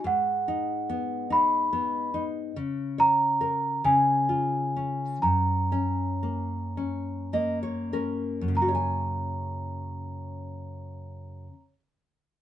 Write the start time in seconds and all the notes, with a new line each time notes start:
0.04 G#2 F#5
0.48 D#4
0.90 B3
1.30 D#4 B5
1.73 B3
2.14 D#4
2.56 C#3
2.98 C#5 A#5
3.41 A#4
3.84 C#3 G#5
4.29 F4
4.76 C#4
5.22 F#2 A#5
5.72 C#4
6.23 A#3
6.77 C#4
7.33 A#3 D#5
7.63 C#5
7.93 C#4 A#4
8.41 F#2
8.48 C#3
8.55 A#3 A#5
8.62 F#4
8.68 C#5
8.75 G#5